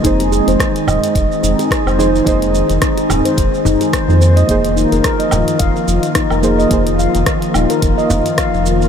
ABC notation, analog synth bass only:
X:1
M:4/4
L:1/16
Q:"Swing 16ths" 1/4=108
K:Ebmix
V:1 name="Analog synth bass" clef=bass
F,,,3 F,,, z2 E,,, z F,,, z F,,, z2 F,,,3 | F,,,3 F,,, z2 E,,, z F,,, z F,,, z2 F,,3 | F,,,3 F,,, z2 E,,, z F,,, z F,,, z2 F,,,3 | F,,,3 F,,, z2 E,,, z F,,, z F,,, z2 F,,,3 |]